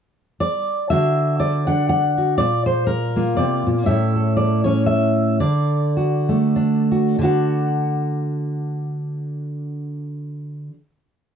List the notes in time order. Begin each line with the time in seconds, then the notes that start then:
0.40 D5
0.90 D3 D4 F#4 E5
1.40 D5
1.67 D4 F#5
1.89 F#5
2.17 F#4
2.38 A#2 D5
2.66 C5
2.87 A#4
3.16 A#3 F4
3.37 C3 D5
3.67 A#2
3.86 A2 C#4 E4 A4 E5
4.16 A4
4.37 D5
4.64 C#4 C#5
4.86 E5
5.40 D3 D5
5.97 F#4
6.29 A3
6.56 D4
6.91 F#4
7.19 D3 D4
7.23 F#4 F#5